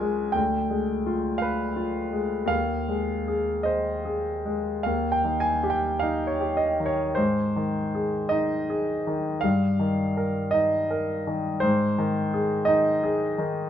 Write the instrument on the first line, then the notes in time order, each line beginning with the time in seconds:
grand piano
Already playing: C#2 F4 A#4 G#5 A#5
0.00 G#3
0.32 D2 G5
0.70 G#3
1.06 F4
1.38 B4 F5
1.76 F4
2.13 G#3
2.46 D#2 F5
2.88 G#3
3.28 G#4
3.63 C5 D#5
4.05 G#4
4.46 G#3
4.83 D#2 F5
5.12 G5
5.24 D#3
5.40 G#5
5.64 G4
5.70 G5
5.99 D#4 F5
6.27 C#5
6.41 G4
6.57 D#5
6.80 D#3
6.86 C#5
7.15 G#2 C5
7.56 D#3
7.95 G#4
8.29 D#4 D#5
8.70 G#4
9.07 D#3
9.41 G2 F5
9.79 D#3
10.17 A#4
10.51 D#4 D#5
10.91 A#4
11.27 D#3
11.60 G#2 C5
11.98 D#3
12.34 G#4
12.65 D#4 D#5
13.04 G#4
13.38 D#3